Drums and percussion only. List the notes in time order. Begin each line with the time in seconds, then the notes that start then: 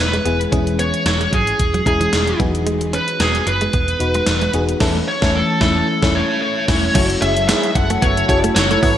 0.13 closed hi-hat
0.26 closed hi-hat
0.41 closed hi-hat
0.52 kick, closed hi-hat
0.67 closed hi-hat
0.79 closed hi-hat
0.94 closed hi-hat
1.06 snare, closed hi-hat
1.21 closed hi-hat
1.33 kick, closed hi-hat
1.47 closed hi-hat
1.59 kick, closed hi-hat
1.74 closed hi-hat
1.86 kick, closed hi-hat
2.01 closed hi-hat
2.13 snare, closed hi-hat
2.27 closed hi-hat
2.40 kick, closed hi-hat
2.55 closed hi-hat
2.67 closed hi-hat
2.81 closed hi-hat
2.93 closed hi-hat
3.08 closed hi-hat
3.20 snare, closed hi-hat
3.35 closed hi-hat
3.47 closed hi-hat
3.61 closed hi-hat
3.73 kick, closed hi-hat
3.88 closed hi-hat
4.00 closed hi-hat
4.14 closed hi-hat
4.26 snare, closed hi-hat
4.41 closed hi-hat
4.53 closed hi-hat
4.69 closed hi-hat
4.80 kick, snare, crash
5.22 kick, snare
5.61 kick, snare
6.03 kick, snare
6.68 kick, snare, crash
6.95 kick, closed hi-hat, crash
7.10 closed hi-hat
7.22 closed hi-hat
7.37 closed hi-hat
7.49 snare, closed hi-hat, tambourine
7.63 closed hi-hat
7.75 kick, closed hi-hat
7.90 closed hi-hat
8.02 kick, closed hi-hat
8.17 closed hi-hat
8.29 kick, closed hi-hat
8.44 closed hi-hat
8.56 snare, closed hi-hat, tambourine
8.71 closed hi-hat
8.83 kick, open hi-hat